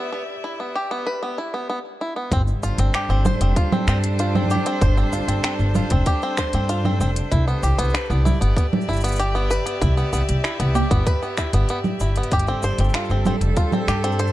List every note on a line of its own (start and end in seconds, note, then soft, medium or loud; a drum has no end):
0.00 0.11 B3 medium
0.00 1.69 G4 medium
0.00 1.69 D5 medium
0.00 1.69 E5 medium
0.12 0.22 B3 medium
0.12 cabasa medium
0.29 cabasa soft
0.44 0.58 E4 medium
0.44 cabasa soft
0.60 0.74 B3 medium
0.60 cabasa soft
0.76 0.90 G4 medium
0.76 cabasa medium
0.91 1.06 B3 medium
0.91 cabasa soft
1.06 1.21 B4 medium
1.06 cabasa soft
1.22 1.36 B3 medium
1.22 cabasa soft
1.38 1.53 E4 medium
1.38 cabasa medium
1.54 1.69 B3 medium
1.54 cabasa soft
1.70 1.78 B3 medium
2.01 2.15 E4 medium
2.16 2.30 B3 medium
2.31 2.51 G1 loud
2.31 7.32 G3 medium
2.31 2.41 C4 medium
2.31 kick loud
2.31 closed hi-hat soft
2.31 cabasa soft
2.47 cabasa soft
2.61 2.73 G1 medium
2.61 2.77 F4 medium
2.61 9.04 A4 medium
2.61 8.16 C5 medium
2.61 cabasa medium
2.67 8.18 D4 loud
2.78 2.88 G1 loud
2.78 2.93 C4 medium
2.78 closed hi-hat medium
2.78 cabasa soft
2.94 3.09 G4 medium
2.94 finger snap medium
2.94 closed hi-hat soft
2.94 cabasa soft
3.09 3.29 G1 medium
3.09 3.25 C4 medium
3.09 cabasa soft
3.25 3.40 C5 loud
3.25 low conga medium
3.25 cabasa medium
3.41 3.51 F1 medium
3.41 3.55 C4 medium
3.41 closed hi-hat medium
3.41 cabasa soft
3.56 3.72 F4 medium
3.56 kick loud
3.56 closed hi-hat soft
3.56 cabasa soft
3.72 3.87 C4 medium
3.72 low conga medium
3.72 cabasa soft
3.87 4.56 G2 medium
3.87 3.97 C4 medium
3.87 finger snap medium
3.87 cabasa medium
4.04 closed hi-hat medium
4.04 cabasa soft
4.19 4.34 F4 medium
4.19 closed hi-hat soft
4.19 cabasa soft
4.35 4.49 C4 medium
4.35 low conga medium
4.35 cabasa soft
4.45 low conga soft
4.50 4.65 G4 medium
4.50 cabasa medium
4.56 low conga soft
4.66 4.81 C4 medium
4.66 closed hi-hat medium
4.66 cabasa soft
4.81 5.01 G1 medium
4.81 4.96 C5 loud
4.81 kick loud
4.81 closed hi-hat soft
4.81 cabasa soft
4.97 5.11 C4 medium
4.97 cabasa soft
5.12 5.23 G1 medium
5.12 5.28 F4 medium
5.12 cabasa medium
5.28 5.38 G1 medium
5.28 5.43 C4 medium
5.28 closed hi-hat soft
5.28 cabasa soft
5.44 5.53 C4 medium
5.44 finger snap medium
5.44 closed hi-hat soft
5.44 cabasa soft
5.59 5.79 G1 medium
5.59 cabasa soft
5.75 5.89 F4 medium
5.75 low conga medium
5.75 cabasa medium
5.90 6.01 F1 medium
5.90 6.05 C4 medium
5.90 kick loud
5.90 closed hi-hat medium
5.90 cabasa soft
6.06 6.21 G4 medium
6.06 kick loud
6.06 closed hi-hat soft
6.06 cabasa soft
6.22 6.38 C4 loud
6.22 cabasa soft
6.37 6.52 C5 loud
6.37 finger snap medium
6.37 kick medium
6.37 cabasa medium
6.53 7.02 G2 medium
6.53 6.68 C4 medium
6.53 closed hi-hat medium
6.53 cabasa soft
6.69 6.84 F4 medium
6.69 closed hi-hat soft
6.69 cabasa soft
6.85 7.00 C4 medium
6.85 low conga medium
6.85 cabasa soft
7.00 7.20 F1 medium
7.00 7.09 C4 medium
7.00 cabasa medium
7.16 closed hi-hat medium
7.16 cabasa soft
7.32 7.51 C2 medium
7.32 7.46 E4 medium
7.32 kick loud
7.32 closed hi-hat soft
7.32 cabasa soft
7.48 7.62 B3 medium
7.48 14.16 G4 medium
7.48 cabasa soft
7.63 7.73 C2 medium
7.63 7.77 G4 medium
7.63 cabasa medium
7.78 7.88 C2 medium
7.78 7.93 B3 loud
7.78 closed hi-hat medium
7.78 cabasa soft
7.84 cabasa soft
7.89 cabasa soft
7.94 8.08 B4 medium
7.94 finger snap medium
7.94 closed hi-hat soft
7.94 cabasa soft
8.05 cabasa soft
8.10 8.29 C2 loud
8.10 8.24 B3 medium
8.10 13.31 D5 medium
8.10 cabasa soft
8.25 8.40 E4 medium
8.25 low conga medium
8.25 cabasa medium
8.41 8.51 G1 medium
8.41 8.56 B3 medium
8.41 closed hi-hat soft
8.41 cabasa soft
8.45 13.47 E5 medium
8.57 8.66 B3 medium
8.57 kick loud
8.57 closed hi-hat soft
8.57 cabasa soft
8.73 low conga medium
8.81 cabasa soft
8.88 9.57 G1 medium
8.88 9.02 E4 medium
8.88 cabasa soft
8.93 cabasa soft
8.96 cabasa soft
9.01 9.18 B3 medium
9.01 closed hi-hat medium
9.01 cabasa soft
9.04 cabasa medium
9.08 cabasa medium
9.12 cabasa medium
9.16 9.33 G4 medium
9.16 closed hi-hat soft
9.16 cabasa medium
9.35 9.50 B3 loud
9.35 cabasa soft
9.51 9.65 B4 medium
9.51 cabasa medium
9.66 9.80 B3 medium
9.66 closed hi-hat medium
9.66 cabasa soft
9.81 10.01 C2 loud
9.81 9.96 E4 medium
9.81 kick loud
9.81 closed hi-hat soft
9.81 cabasa soft
9.97 10.12 B3 medium
9.97 cabasa soft
10.13 10.23 C2 medium
10.13 10.22 B3 medium
10.13 cabasa medium
10.29 10.38 C2 medium
10.29 closed hi-hat medium
10.29 cabasa soft
10.44 10.58 E4 medium
10.44 finger snap medium
10.44 cabasa soft
10.60 10.79 C2 medium
10.60 10.74 B3 medium
10.60 closed hi-hat soft
10.60 cabasa soft
10.75 10.89 G4 medium
10.75 low conga medium
10.75 cabasa medium
10.91 11.01 G1 medium
10.91 11.06 B3 loud
10.91 kick loud
10.91 closed hi-hat soft
10.91 cabasa soft
11.07 11.21 B4 medium
11.07 kick loud
11.07 closed hi-hat soft
11.07 cabasa soft
11.22 11.37 B3 medium
11.22 cabasa soft
11.37 11.53 E4 medium
11.37 finger snap medium
11.37 kick medium
11.37 cabasa medium
11.53 11.63 G1 loud
11.53 11.69 B3 medium
11.53 closed hi-hat medium
11.53 cabasa soft
11.69 11.79 B3 medium
11.69 closed hi-hat soft
11.69 cabasa soft
11.84 low conga medium
11.84 cabasa soft
12.00 12.20 G1 medium
12.00 12.15 E4 medium
12.00 cabasa medium
12.16 12.31 B3 medium
12.16 closed hi-hat soft
12.16 cabasa soft
12.23 closed hi-hat soft
12.31 12.51 G1 medium
12.31 14.32 G3 medium
12.31 12.46 G4 medium
12.31 kick loud
12.31 closed hi-hat soft
12.31 cabasa soft
12.39 closed hi-hat soft
12.45 12.63 C4 loud
12.45 14.32 A4 loud
12.45 cabasa soft
12.51 14.32 D4 medium
12.63 12.73 G1 medium
12.63 12.78 C5 loud
12.63 cabasa medium
12.78 12.88 G1 medium
12.78 12.93 C4 medium
12.78 closed hi-hat medium
12.78 cabasa soft
12.84 cabasa soft
12.89 cabasa soft
12.94 13.10 F4 medium
12.94 finger snap medium
12.94 closed hi-hat soft
12.94 cabasa soft
13.05 cabasa soft
13.10 13.29 G1 medium
13.10 13.25 C4 medium
13.10 cabasa soft
13.26 13.35 C4 medium
13.26 low conga medium
13.26 cabasa medium
13.41 13.51 F1 medium
13.41 closed hi-hat soft
13.41 cabasa soft
13.57 13.71 F4 medium
13.57 kick loud
13.57 closed hi-hat soft
13.57 cabasa soft
13.72 13.87 C4 medium
13.72 low conga medium
13.72 cabasa soft
13.88 14.32 G2 loud
13.88 14.02 G4 medium
13.88 finger snap medium
13.88 cabasa medium
14.04 14.19 C4 loud
14.04 closed hi-hat soft
14.04 cabasa soft
14.12 cabasa soft
14.19 14.32 C5 loud
14.19 closed hi-hat soft
14.19 cabasa soft
14.27 cabasa soft